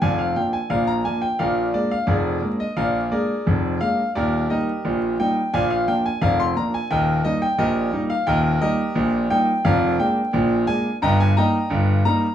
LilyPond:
<<
  \new Staff \with { instrumentName = "Grand piano" } { \time 2/4 \key ees \major \tempo 4 = 87 <d'' f'' aes''>16 f''16 g''16 aes''16 <bes' d'' f''>16 bes''16 aes''16 g''16 | <bes' d'' f''>8 d''16 f''16 <aes' bes' d''>8. ees''16 | <bes' d'' f''>8 <aes' bes' d''>4 f''8 | <g' bes' d''>8 <g' bes' ees''>4 g''8 |
<d'' f'' aes''>16 f''16 g''16 aes''16 <bes' d'' f''>16 c'''16 bes''16 aes''16 | <bes' ees'' g''>8 ees''16 g''16 <g' bes' ees''>8. f''16 | <bes' ees'' g''>8 <g' bes' ees''>4 g''8 | <bes' d'' f''>8 g''4 aes''8 |
<ees'' g'' bes''>16 aes''16 <ees'' g'' bes''>4 bes''8 | }
  \new Staff \with { instrumentName = "Grand piano" } { \clef bass \time 2/4 \key ees \major <f,, f,>8 <f bes d'>8 <bes,, bes,>8 <f bes d'>8 | <bes,, bes,>8 <aes bes d'>8 <f,, f,>8 <aes bes d'>8 | <bes,, bes,>8 <aes bes d'>8 <f,, f,>8 <aes bes d'>8 | <ees,, ees,>8 <g bes ees'>8 <bes,, bes,>8 <g bes ees'>8 |
<bes,, bes,>8 <f bes d'>8 <f,, f,>8 <f bes d'>8 | <ees,, ees,>8 <g bes ees'>8 <bes,, bes,>8 <g bes ees'>8 | <ees,, ees,>8 <g bes ees'>8 <bes,, bes,>8 <g bes ees'>8 | <f,, f,>8 <aes bes d'>8 <bes,, bes,>8 <aes bes d'>8 |
<g,, g,>8 <g bes ees'>8 <g,, g,>8 <g bes ees'>8 | }
>>